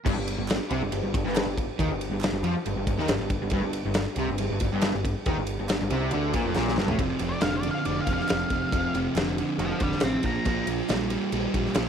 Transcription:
0.06 G1 G2, kick, crash
0.16 G1 G2
0.28 ride
0.38 G1 G2
0.48 snare, clap, ride
0.70 C2 C3, ride
0.81 G1 G2
0.92 G1 G2, ride
1.03 G1 G2
1.14 G1 G2, kick, ride
1.25 G1 G2, snare
1.35 snare, clap, ride
1.46 G1 G2
1.58 kick, ride
1.79 D#2 D#3, kick, ride
1.90 G1 G2
2.01 ride
2.10 G1 G2
2.20 snare, clap, ride
2.32 G1 G2
2.43 F2 F3, ride
2.55 muted distorted electric guitar stroke, muted picked electric bass stroke, muted overdriven electric guitar stroke
2.66 G1 G2, ride
2.76 G1 G2
2.87 G1 G2, kick, ride
2.98 D#2 D#3, snare
3.08 G1 G2, snare, clap, ride
3.19 G1 G2
3.30 kick, ride
3.42 G1 G2
3.50 G1 G2, kick, ride
3.64 G1 G2
3.73 ride
3.85 G1 G2
3.94 snare, clap, ride
4.16 C2 C3, ride
4.28 G1 G2
4.38 G1 G2, ride
4.51 G1 G2
4.60 G1 G2, kick, ride
4.72 G1 G2
4.81 snare, clap, ride
4.94 G1 G2
5.05 kick, ride
5.26 D#2 D#3, kick, ride
5.38 G1 G2
5.47 ride
5.59 G1 G2
5.69 snare, clap, ride
5.81 G1 G2
5.90 C2 C3, ride
6.11 D2 D3, ride
6.34 A#1 A#2, kick, ride
6.46 F1 F2
6.55 A#1 A#2, snare, clap
6.68 snare
6.77 G1 G2, snare
6.88 A1 A2, floor tom
6.99 F1 F2 C3, kick, ride
7.19 F1 F2 C3, clap, ride
7.29 D5
7.41 F1 F2 D3 F5, snare, clap, ride
7.57 D5
7.63 F2 D3, ride
7.71 F5
7.85 F1 F2 D3 D5, ride
8.02 F5
8.07 F1 F2 D3, kick, ride
8.14 F5
8.19 snare
8.28 F1 F2 C3, snare, clap, ride
8.50 F1 F2 C3, kick, ride
8.72 F1 F2 C3, kick, ride
8.94 F1 F2 C3, clap, ride
9.15 F1 F2 D3, snare, clap, ride
9.38 F2 D3, ride
9.58 F1 F2 D3 C5 F5, ride
9.80 F1 F2 D3 D5 G5, kick, ride
9.92 snare
10.00 A1 G5, snare, clap, ride
10.04 F2 C3 C6
10.23 A#1 A#5, kick, ride
10.27 A#2 F3
10.45 A#1 A#2 F3, kick, ride
10.67 A#1 A#2 F3, ride
10.89 A#1 A#2 G3, snare, clap, ride
11.10 A#2 G3, ride
11.32 A#1 A#2 G3, ride
11.54 A#1 A#2 G3, kick, ride
11.66 snare
11.75 A#1 A#2 F3, snare, clap, ride

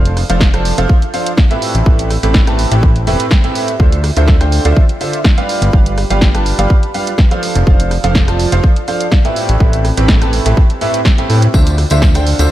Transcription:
Already playing: F1 F3 D4 F4 G4 A4 C5 F5 B5
0.05 closed hi-hat
0.17 D5, cross-stick, open hi-hat
0.30 F1 F3 D4 F4 A4 C5 F5, closed hi-hat
0.41 kick, snare
0.54 F3 D4 F4 A4 C5 A5, cross-stick, closed hi-hat
0.65 open hi-hat
0.78 F1 F3 D4 F4 A4 C5 F5, closed hi-hat
0.89 kick
1.02 closed hi-hat
1.14 F3 D4 F4 A4 C5 F5, open hi-hat
1.26 closed hi-hat
1.37 kick, snare
1.51 A2 C4 G4 A4 B4 E5, closed hi-hat
1.62 G4, open hi-hat
1.75 A1, closed hi-hat
1.86 A1 A2 C4 G4 A4 B4 E5, kick
1.99 closed hi-hat
2.10 cross-stick, open hi-hat
2.15 C5
2.23 A1 A2 C4 G4 A4 B4 E5, closed hi-hat
2.34 kick, snare
2.47 A2 C4 G4 A4 B4 A5, cross-stick, closed hi-hat
2.53 B5
2.59 open hi-hat
2.71 A1 A2 C4 G4 A4 B4 E5, closed hi-hat
2.83 kick
2.96 closed hi-hat
3.07 E1 A2 C4 G4 A4 B4 E5, open hi-hat
3.20 closed hi-hat
3.31 kick, snare
3.44 A2 C4 G4 A4 B4 E5, closed hi-hat
3.55 open hi-hat
3.68 closed hi-hat
3.80 D2 D3 D4 F4 A4 C5 E5, kick
3.92 closed hi-hat
4.04 cross-stick, open hi-hat
4.12 C6
4.17 D2 D3 D4 F4 A4 C5 E5, closed hi-hat
4.26 E5, kick, snare
4.41 D3 D4 F4 A4 C5 G5, cross-stick, closed hi-hat
4.52 open hi-hat
4.65 D2 D3 D4 F4 A4 C5 E5, closed hi-hat
4.77 kick
4.89 closed hi-hat
5.01 D3 D4 F4 A4 C5 E5, open hi-hat
5.13 closed hi-hat
5.24 kick, snare
5.38 G3 D4 F4 G4 B4 F5, closed hi-hat
5.49 G4, open hi-hat
5.62 G1, closed hi-hat
5.68 F5
5.73 G1 G3 D4 F4 G4 B4 F5, kick
5.86 closed hi-hat
5.93 B5
5.98 cross-stick, open hi-hat
6.10 G1 G3 D4 F4 G4 B4 F5, closed hi-hat
6.21 kick, snare
6.34 G3 D4 F4 G4 B4 A5, cross-stick, closed hi-hat
6.46 open hi-hat
6.59 G1 G3 D4 F4 G4 B4 F5, closed hi-hat
6.70 kick
6.83 closed hi-hat
6.94 G3 D4 F4 G4 B4 F5, open hi-hat
7.07 closed hi-hat
7.18 kick, snare
7.31 F3 D4 F4 A4 C5 F5, closed hi-hat
7.43 F4, open hi-hat
7.55 F1, closed hi-hat
7.67 F1 F3 D4 F4 A4 C5 D5 F5, kick
7.80 closed hi-hat
7.91 cross-stick, open hi-hat
8.04 F1 F3 D4 F4 A4 C5 F5, closed hi-hat
8.15 kick, snare
8.28 F3 D4 F4 A4 C5 A5, cross-stick, closed hi-hat
8.39 open hi-hat
8.52 F1 F3 D4 F4 A4 C5 F5, closed hi-hat
8.64 kick
8.76 closed hi-hat
8.88 F3 D4 F4 A4 C5 F5, open hi-hat
9.01 closed hi-hat
9.12 kick, snare
9.25 A2 C4 G4 A4 B4 E5, closed hi-hat
9.36 G4, open hi-hat
9.49 A1, closed hi-hat
9.60 A1 A2 C4 G4 A4 B4 E5, kick
9.73 closed hi-hat
9.85 C5, cross-stick, open hi-hat
9.97 A1 A2 C4 G4 A4 B4 E5, closed hi-hat
10.02 B5
10.08 kick, snare
10.21 A2 C4 G4 A4 B4 A5, cross-stick, closed hi-hat
10.33 open hi-hat
10.46 A1 A2 C4 G4 A4 B4 E5, closed hi-hat
10.57 kick
10.70 closed hi-hat
10.81 A2 C4 G4 A4 B4 E5, open hi-hat
10.94 closed hi-hat
11.05 kick, snare
11.18 A2 C4 G4 A4 B4 E5, closed hi-hat
11.30 A2, open hi-hat
11.42 closed hi-hat
11.54 D2 D3 D4 F4 A4 C5 E5, kick, tambourine
11.67 closed hi-hat, tambourine
11.78 cross-stick, open hi-hat
11.90 D2 D3 D4 F4 A4 C5 E5, closed hi-hat, tambourine
12.02 kick, snare, tambourine
12.14 D3 D4 F4 A4 C5 G5, cross-stick, closed hi-hat, tambourine
12.27 open hi-hat
12.39 D2 D3 D4 F4 A4 C5 E5, closed hi-hat, tambourine

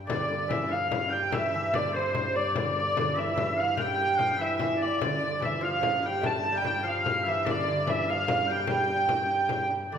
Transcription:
Already playing: G2
0.07 D3 D5, frame drum
0.11 G2
0.28 D3
0.48 E3 E5, frame drum
0.68 F3 F5, frame drum
0.89 F5, frame drum
1.09 G3 G5
1.31 E3 E5, frame drum
1.54 E3
1.73 D3 D5, frame drum
1.87 D3
1.93 C3 C5, frame drum
2.15 C5, frame drum
2.36 D5
2.54 D3 D5, frame drum
2.97 D3, frame drum
3.16 E3 E5, frame drum
3.29 F3
3.36 E3, frame drum
3.56 F5
3.77 G3 G5, frame drum
3.81 G5
4.17 F3 F5, frame drum
4.38 E3 E5
4.59 E3, frame drum
4.77 D5
4.82 D5
4.99 G2 D3 D5, frame drum
5.04 D5
5.21 D3
5.40 E3 E5, frame drum
5.45 E5
5.61 F3 F5, frame drum
5.81 F3, frame drum
6.03 G3 G5
6.21 A3 A5, frame drum
6.26 A5
6.52 G3 G5
6.58 G5
6.62 G3 G5, frame drum
6.67 G5
6.83 F3 F5, frame drum
6.88 F5
7.04 F5, frame drum
7.24 E3 E5
7.29 E5
7.45 D3 D5, frame drum
7.50 D5
7.68 D3
7.87 E3 E5, frame drum
8.08 F3 F5, frame drum
8.28 frame drum
8.47 G3 G5
8.67 G3 G5, frame drum
8.88 frame drum
9.09 frame drum
9.49 frame drum
9.91 G2 D3 D5

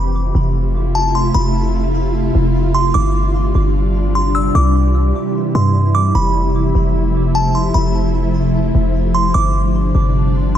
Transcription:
Already playing: F1 C3 A3 E4 F4 B5
0.35 F1
0.95 A5
1.15 C6
1.34 F1 B5
2.35 F1
2.74 C6
2.94 G1 G3 D4 D6
3.55 G1
4.15 C6
4.35 E6
4.55 C2 C3 E3 E4 D6
5.55 G2 C6
5.95 D6
6.15 F1 F3 A3 B5
6.75 F1
7.35 A5
7.55 C6
7.74 F1 B5
8.75 F1
9.14 C6
9.34 G1 C3 G3 D4 D6
9.95 G1

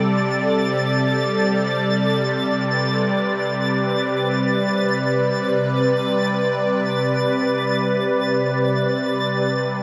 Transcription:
Already playing: C3 G3 A4 D5 A6
2.62 B4

